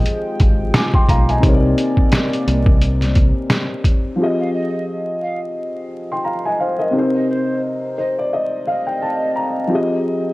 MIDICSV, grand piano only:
0, 0, Header, 1, 2, 480
1, 0, Start_track
1, 0, Tempo, 689655
1, 998, Time_signature, 4, 2, 24, 8
1, 7191, End_track
2, 0, Start_track
2, 0, Title_t, "Grand piano"
2, 0, Program_c, 0, 0
2, 0, Control_c, 0, 64, 127
2, 0, Note_on_c, 0, 53, 83
2, 0, Note_on_c, 0, 60, 70
2, 0, Note_on_c, 0, 67, 72
2, 0, Note_on_c, 0, 68, 72
2, 0, Note_on_c, 0, 75, 88
2, 504, Note_off_c, 0, 75, 0
2, 521, Note_on_c, 0, 86, 64
2, 524, Note_on_c, 0, 80, 58
2, 649, Note_off_c, 0, 86, 0
2, 651, Note_off_c, 0, 80, 0
2, 658, Note_on_c, 0, 84, 79
2, 662, Note_on_c, 0, 79, 69
2, 755, Note_off_c, 0, 84, 0
2, 757, Note_off_c, 0, 79, 0
2, 759, Note_on_c, 0, 82, 75
2, 763, Note_on_c, 0, 77, 63
2, 888, Note_off_c, 0, 82, 0
2, 890, Note_off_c, 0, 77, 0
2, 897, Note_on_c, 0, 80, 70
2, 901, Note_on_c, 0, 75, 56
2, 958, Note_off_c, 0, 53, 0
2, 964, Note_off_c, 0, 60, 0
2, 971, Note_off_c, 0, 67, 0
2, 975, Note_on_c, 0, 48, 80
2, 977, Note_off_c, 0, 68, 0
2, 989, Note_on_c, 0, 60, 74
2, 1001, Note_on_c, 0, 63, 72
2, 1008, Control_c, 0, 64, 0
2, 1015, Note_on_c, 0, 70, 74
2, 1028, Note_on_c, 0, 73, 71
2, 1064, Note_off_c, 0, 73, 0
2, 1073, Note_on_c, 0, 74, 81
2, 1112, Control_c, 0, 64, 127
2, 1124, Note_off_c, 0, 80, 0
2, 1126, Note_off_c, 0, 75, 0
2, 2879, Note_off_c, 0, 48, 0
2, 2886, Note_off_c, 0, 60, 0
2, 2892, Note_off_c, 0, 63, 0
2, 2894, Note_on_c, 0, 53, 76
2, 2899, Note_off_c, 0, 70, 0
2, 2907, Note_on_c, 0, 60, 67
2, 2921, Note_on_c, 0, 67, 66
2, 2927, Control_c, 0, 64, 0
2, 2928, Note_off_c, 0, 74, 0
2, 2934, Note_on_c, 0, 68, 67
2, 2946, Note_on_c, 0, 75, 85
2, 3039, Control_c, 0, 64, 127
2, 4109, Note_off_c, 0, 75, 0
2, 4257, Note_on_c, 0, 84, 64
2, 4262, Note_on_c, 0, 79, 52
2, 4345, Note_on_c, 0, 82, 64
2, 4350, Note_on_c, 0, 77, 58
2, 4354, Note_off_c, 0, 84, 0
2, 4357, Note_off_c, 0, 79, 0
2, 4481, Note_off_c, 0, 82, 0
2, 4483, Note_off_c, 0, 77, 0
2, 4491, Note_on_c, 0, 80, 71
2, 4495, Note_on_c, 0, 75, 58
2, 4591, Note_off_c, 0, 80, 0
2, 4592, Note_on_c, 0, 77, 70
2, 4593, Note_off_c, 0, 75, 0
2, 4596, Note_on_c, 0, 72, 60
2, 4724, Note_off_c, 0, 77, 0
2, 4725, Note_on_c, 0, 75, 68
2, 4726, Note_off_c, 0, 72, 0
2, 4729, Note_on_c, 0, 70, 50
2, 4798, Note_off_c, 0, 53, 0
2, 4805, Note_off_c, 0, 60, 0
2, 4809, Note_on_c, 0, 48, 74
2, 4812, Note_off_c, 0, 67, 0
2, 4818, Note_off_c, 0, 68, 0
2, 4821, Note_on_c, 0, 60, 71
2, 4835, Note_on_c, 0, 63, 67
2, 4837, Note_off_c, 0, 70, 0
2, 4846, Control_c, 0, 64, 0
2, 4847, Note_on_c, 0, 70, 66
2, 4862, Note_on_c, 0, 72, 88
2, 4958, Note_off_c, 0, 75, 0
2, 4981, Control_c, 0, 64, 127
2, 5544, Note_off_c, 0, 72, 0
2, 5554, Note_on_c, 0, 72, 74
2, 5683, Note_off_c, 0, 72, 0
2, 5699, Note_on_c, 0, 74, 71
2, 5793, Note_off_c, 0, 74, 0
2, 5799, Note_on_c, 0, 75, 71
2, 6022, Note_off_c, 0, 75, 0
2, 6036, Note_on_c, 0, 77, 72
2, 6163, Note_off_c, 0, 77, 0
2, 6171, Note_on_c, 0, 79, 64
2, 6269, Note_off_c, 0, 79, 0
2, 6278, Note_on_c, 0, 81, 72
2, 6501, Note_off_c, 0, 81, 0
2, 6512, Note_on_c, 0, 82, 73
2, 6716, Note_off_c, 0, 48, 0
2, 6722, Note_off_c, 0, 60, 0
2, 6729, Note_off_c, 0, 63, 0
2, 6733, Note_on_c, 0, 53, 76
2, 6735, Note_off_c, 0, 70, 0
2, 6738, Note_off_c, 0, 82, 0
2, 6746, Note_on_c, 0, 60, 70
2, 6759, Note_on_c, 0, 67, 68
2, 6766, Control_c, 0, 64, 0
2, 6773, Note_on_c, 0, 68, 67
2, 6785, Note_on_c, 0, 75, 87
2, 6893, Control_c, 0, 64, 127
2, 7191, Note_off_c, 0, 53, 0
2, 7191, Note_off_c, 0, 60, 0
2, 7191, Note_off_c, 0, 67, 0
2, 7191, Note_off_c, 0, 68, 0
2, 7191, Note_off_c, 0, 75, 0
2, 7191, End_track
0, 0, End_of_file